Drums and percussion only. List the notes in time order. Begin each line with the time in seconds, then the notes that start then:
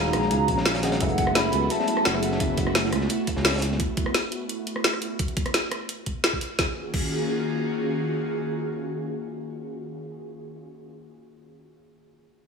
0.05 snare
0.13 cross-stick, closed hi-hat
0.22 snare
0.31 closed hi-hat
0.48 kick, closed hi-hat
0.57 snare
0.65 snare, closed hi-hat
0.74 snare, closed hi-hat
0.83 snare, closed hi-hat, open hi-hat
0.92 snare, closed hi-hat
1.00 kick, closed hi-hat
1.08 closed hi-hat
1.18 kick, closed hi-hat
1.27 cross-stick
1.35 snare, closed hi-hat
1.52 closed hi-hat
1.70 closed hi-hat
1.80 snare
1.87 closed hi-hat
1.97 cross-stick
2.05 snare, closed hi-hat
2.14 cross-stick
2.23 closed hi-hat, open hi-hat
2.31 snare
2.40 kick, closed hi-hat
2.57 kick, closed hi-hat
2.67 cross-stick
2.75 snare, closed hi-hat
2.85 snare
2.92 cross-stick, closed hi-hat
3.01 snare
3.09 closed hi-hat
3.27 kick, closed hi-hat
3.36 snare
3.45 snare, closed hi-hat
3.49 snare, closed hi-hat
3.54 snare, closed hi-hat
3.58 snare, closed hi-hat
3.62 closed hi-hat, open hi-hat
3.72 snare
3.80 kick, closed hi-hat
3.97 kick, closed hi-hat
4.06 cross-stick
4.14 snare, closed hi-hat
4.32 closed hi-hat
4.49 closed hi-hat
4.67 closed hi-hat
4.76 cross-stick
4.84 snare, closed hi-hat
4.93 cross-stick
5.02 open hi-hat
5.19 kick, closed hi-hat
5.28 closed hi-hat
5.37 kick, closed hi-hat
5.46 cross-stick, closed hi-hat
5.54 snare, closed hi-hat
5.72 cross-stick, closed hi-hat
5.89 closed hi-hat
6.06 kick, closed hi-hat
6.24 snare, closed hi-hat
6.33 kick
6.41 open hi-hat
6.59 kick, snare
6.94 kick, crash